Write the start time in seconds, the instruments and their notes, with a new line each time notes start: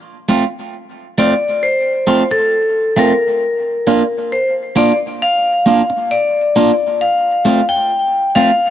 0.29 clean electric guitar A3 C4 F4
1.18 clean electric guitar A3 C4 F4, vibraphone D5
1.63 vibraphone C5
2.07 clean electric guitar A3 C4 F4
2.31 vibraphone A4, muted clean electric guitar stroke
2.96 clean electric guitar A3 C4 F4, vibraphone A#4
3.87 clean electric guitar A#3 D4 F4
4.32 vibraphone C5
4.76 clean electric guitar A#3 D4 F4, vibraphone D5
5.22 vibraphone F5
5.66 clean electric guitar A#3 D4 F4
5.90 muted clean electric guitar stroke
6.11 vibraphone D5
6.56 clean electric guitar A#3 D4 F4
7.01 vibraphone F5
7.45 clean electric guitar A3 C4 F4
7.69 vibraphone G5
8.35 clean electric guitar A3 C4 F4, vibraphone F5